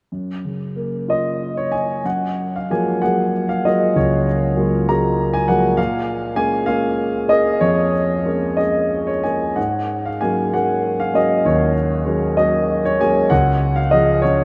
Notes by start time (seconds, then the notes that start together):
0.12 F#2
0.45 C#3
0.76 A#3
1.08 F4 D#5
1.57 C#5
1.72 G#5
2.05 F#2 F#5
2.56 F5
2.70 F3 F#3 G#3 A#3 G#5
3.02 F#3 G#3 A#3 G#4 F#5
3.49 F5
3.65 F#3 G#3 A#3 F4 D#5
3.96 C#2 C#5
4.56 F#3 G#3 A#3 F4
4.88 F#3 G#3 A#3 F4 A#5
5.33 G#5
5.48 F3 F#3 G#3 A#3 F#5
5.77 A#2 F5
6.36 G#3 A#3 C#4 G#5
6.66 G#3 A#3 C#4 F5
7.28 G#3 A#3 C#4 D#5
7.61 F2 C#5
8.25 G#3 A#3 C#4
8.57 G#3 A#3 C#4 D#5
9.07 C#5
9.23 G#3 A#3 C#4 G#5
9.56 G#2 F#5
10.06 F5
10.21 F#3 G#3 A#3 C#4 G#5
10.53 F#3 G#3 A#3 C#4 F#5
11.00 F5
11.13 F#3 G#3 A#3 C#4 D#5
11.45 D#2 C#5
12.05 F#3 G#3 A#3 C#4
12.37 F#3 G#3 A#3 C#4 D#5
12.85 C#5
13.00 F#3 G#3 A#3 C#4 G#5
13.30 C#2 F#5
13.76 F5
13.91 F3 G#3 C#4 D#5
14.22 F3 C#4 C#5